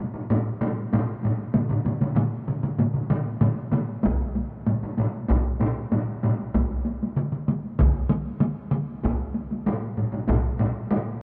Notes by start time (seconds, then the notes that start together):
0.14 taiko low-mid, taiko high
0.30 taiko low-mid, taiko high
0.47 taiko high
0.61 taiko low-mid, taiko high
0.77 taiko high
0.93 taiko low-mid, taiko high
1.08 taiko high
1.23 taiko low-mid, taiko high
1.38 taiko high
1.54 taiko low-mid, taiko mid, taiko high
1.69 taiko low-mid, taiko mid, taiko high
1.85 taiko low-mid, taiko mid, taiko high
2.01 taiko low-mid, taiko mid, taiko high
2.16 taiko low-mid, taiko mid, taiko high
2.32 taiko high
2.48 taiko low-mid, taiko mid
2.63 taiko low-mid, taiko mid, taiko high
2.79 taiko low-mid, taiko mid, taiko high
2.94 taiko low-mid, taiko mid, taiko high
3.10 taiko low-mid, taiko mid, taiko high
3.26 taiko high
3.41 taiko low-mid, taiko mid, taiko high
3.57 taiko high
3.72 taiko low-mid, taiko mid, taiko high
3.88 taiko high
4.03 taiko, taiko high
4.20 taiko high
4.35 taiko high
4.66 taiko low-mid, taiko high
4.82 taiko low-mid, taiko high
4.97 taiko low-mid, taiko high
5.14 taiko high
5.29 taiko, taiko low-mid, taiko high
5.45 taiko high
5.60 taiko low-mid, taiko high
5.76 taiko high
5.92 taiko low-mid, taiko high
6.09 taiko high
6.23 taiko low-mid, taiko high
6.39 taiko high
6.55 taiko, taiko high
6.71 taiko high
6.86 taiko high
7.03 taiko high
7.16 taiko mid, taiko high
7.32 taiko mid
7.48 taiko mid, taiko high
7.64 taiko high
7.79 taiko, taiko mid, taiko high
7.95 taiko high
8.09 taiko mid, taiko high
8.26 taiko high
8.40 taiko mid, taiko high
8.57 taiko high
8.71 taiko mid, taiko high
8.90 taiko high
9.04 taiko, taiko high
9.19 taiko high
9.35 taiko high
9.51 taiko high
9.66 taiko low-mid, taiko high
9.82 taiko high
9.97 taiko low-mid, taiko high
10.12 taiko low-mid, taiko high
10.28 taiko, taiko low-mid, taiko high
10.44 taiko high
10.59 taiko low-mid, taiko high
10.91 taiko low-mid, taiko high
11.08 taiko high